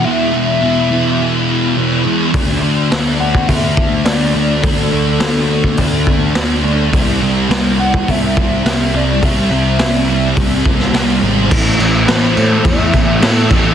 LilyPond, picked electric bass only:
\new Staff \with { instrumentName = "Picked electric bass" } { \clef bass \time 4/4 \key c \lydian \tempo 4 = 105 r1 | d,8 d,8 d,4 d,4 d,8 d,8 | d,8 d,8 d,4 d,4 d,8 d,8 | c,8 c,8 c,4 c,4 c,8 c,8 |
c,8 c,8 c,4 c,4 c,8 gis,,8 | a,,8 a,,8 a,,8 a,8 e,8 a,,8 a,8 a,,8 | }